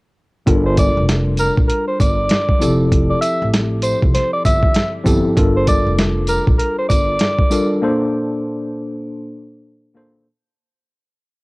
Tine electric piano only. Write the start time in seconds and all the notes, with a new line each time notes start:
0.46 G3 D4 F4 A4 A#4
2.59 F3 C4 E4 G4 A4
5.04 F3 C4 E4 G4 A4
5.36 G3 D4 F4 A4 A#4
7.50 G3 D4 F4 A4 A#4
7.81 A#2 A#3 D4 A4 C5
9.94 A#2 A#3 D4 A4 C5